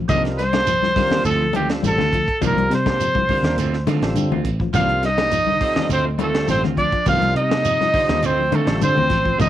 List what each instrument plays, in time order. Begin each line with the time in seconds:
0.08 fingered electric bass C2, clean electric guitar D#3 F3 A#3 D4 G4, tonewheel organ G3 C4 F4 A#4, trumpet D#5, kick, closed hi-hat, high conga, low conga, shekere
0.25 snare, closed hi-hat
0.38 clean electric guitar G3, trumpet C5, snare, closed hi-hat, shekere
0.53 clean electric guitar A#3 D4 G4, snare, high conga
0.67 clean electric guitar F3, closed hi-hat, shekere
0.82 clean electric guitar F3, snare, high conga
0.96 clean electric guitar D3, tonewheel organ G3 C4 F4 A#4, kick, snare, open hi-hat, high conga, shekere
1.11 clean electric guitar A#3 D4 G4, snare, low conga
1.24 fingered electric bass D2, clean electric guitar F3 A3 C4 F4, trumpet A4, closed hi-hat, high conga, shekere
1.42 clean electric guitar F3
1.53 clean electric guitar D#3 F3 A3 C4 F4, trumpet G4, closed hi-hat, high conga, shekere
1.69 clean electric guitar D3, tonewheel organ G3 C4 F4 A4, snare, closed hi-hat
1.83 fingered electric bass A1, snare, closed hi-hat, high conga, shekere
1.87 trumpet A4
1.98 fingered electric bass D2, clean electric guitar A3 C4 F4, snare, low conga
2.13 clean electric guitar F3, kick, closed hi-hat, shekere
2.28 kick, closed hi-hat
2.41 fingered electric bass C2, clean electric guitar D#3 F3 A#3 D4 G4, tonewheel organ G3 C4 F4 A#4, kick, closed hi-hat, high conga, low conga, shekere
2.46 trumpet A#4
2.56 fingered electric bass C2, closed hi-hat, high conga
2.70 fingered electric bass C3, clean electric guitar G3, snare, closed hi-hat, shekere
2.74 trumpet C5
2.86 clean electric guitar A#3 D4 G4, kick, snare, high conga
3.00 clean electric guitar F3, closed hi-hat, high conga, shekere
3.15 clean electric guitar F3, kick, high conga
3.29 clean electric guitar D3, tonewheel organ G3 C4 F4 A#4, kick, open hi-hat, high conga, shekere
3.43 fingered electric bass D#2, clean electric guitar A#3 D4 G4, snare, closed hi-hat
3.57 fingered electric bass D2, clean electric guitar A3 C4 F4, snare, closed hi-hat, high conga, shekere
3.73 muted clean electric guitar stroke, snare
3.87 fingered electric bass D3, clean electric guitar D#3 A3 C4 F4, snare, closed hi-hat, high conga, shekere
4.02 fingered electric bass A1, clean electric guitar D3, tonewheel organ G3 C4 F4 A4, snare, closed hi-hat
4.15 fingered electric bass D3, closed hi-hat, high conga, shekere
4.30 fingered electric bass D2, clean electric guitar C4 F4, low conga
4.45 fingered electric bass A1, kick, closed hi-hat, shekere
4.60 clean electric guitar F3, kick
4.73 fingered electric bass C2, clean electric guitar D#3 F3 A#3 D4 G4, tonewheel organ G3 C4 F4 A#4, tenor saxophone F4, trumpet F5, kick, closed hi-hat, high conga, low conga, shekere
4.89 closed hi-hat
5.03 clean electric guitar G3, tenor saxophone D#4, trumpet D#5, snare, closed hi-hat, shekere
5.17 clean electric guitar A#3 D4 G4, snare, high conga
5.32 clean electric guitar F3, closed hi-hat, high conga, shekere
5.47 clean electric guitar D3, high conga
5.61 tonewheel organ G3 C4 F4 A4, muted clean electric guitar stroke, kick, open hi-hat, shekere
5.76 clean electric guitar A#3 D4 G4, snare, low conga
5.89 fingered electric bass D2, clean electric guitar A3 C4 F4, tenor saxophone C4, trumpet C5, closed hi-hat, high conga, shekere
6.05 clean electric guitar A3
6.18 clean electric guitar D#3 A3 C4 F4, tenor saxophone A3, trumpet A4, closed hi-hat, high conga, shekere
6.34 clean electric guitar D3, tonewheel organ G3 C4 F4 A4, snare, closed hi-hat
6.48 fingered electric bass A1, tenor saxophone C4, trumpet C5, snare, closed hi-hat, high conga, shekere
6.62 fingered electric bass D2, clean electric guitar C4 F4, snare, low conga
6.77 clean electric guitar F3, tenor saxophone D4, trumpet D5, kick, closed hi-hat, shekere
6.92 clean electric guitar F3, kick, closed hi-hat
7.06 fingered electric bass C2, clean electric guitar D#3 F3 A#3 D4 G4, tonewheel organ G3 C4 F4 A#4, tenor saxophone F4, trumpet F5, kick, closed hi-hat, high conga, low conga, shekere
7.21 fingered electric bass C2, closed hi-hat, high conga
7.35 fingered electric bass C3, clean electric guitar G3, tenor saxophone D#4, trumpet D#5, closed hi-hat, shekere
7.49 clean electric guitar A#3 D4 G4, snare, high conga
7.64 clean electric guitar F3, closed hi-hat, high conga, shekere
7.81 clean electric guitar F3, snare, high conga
7.94 clean electric guitar D3, tonewheel organ G3 C4 F4 C5, kick, open hi-hat, shekere
8.08 fingered electric bass D#2, clean electric guitar A#3 D4 G4, snare, closed hi-hat, low conga
8.22 fingered electric bass D2, clean electric guitar A3 C4 F4, tenor saxophone C4, trumpet C5, closed hi-hat, high conga, shekere
8.38 clean electric guitar F3
8.51 fingered electric bass D3, clean electric guitar D#3 A3 C4 F4, tenor saxophone A3, closed hi-hat, high conga, shekere
8.55 trumpet A4
8.66 fingered electric bass A1, clean electric guitar D3, tonewheel organ G3 C4 F4 A4, snare, closed hi-hat
8.81 fingered electric bass D3, tenor saxophone C4, trumpet C5, closed hi-hat, high conga, shekere
8.96 fingered electric bass D2, clean electric guitar C4, low conga
9.09 fingered electric bass A1, clean electric guitar F3, kick, snare, closed hi-hat, shekere
9.26 clean electric guitar F3, kick
9.38 fingered electric bass C2, clean electric guitar D#3 F3 A#3 D4 G4, tonewheel organ G3 C4 F4 A#4, tenor saxophone D#4, trumpet D#5, kick, closed hi-hat, high conga, low conga, shekere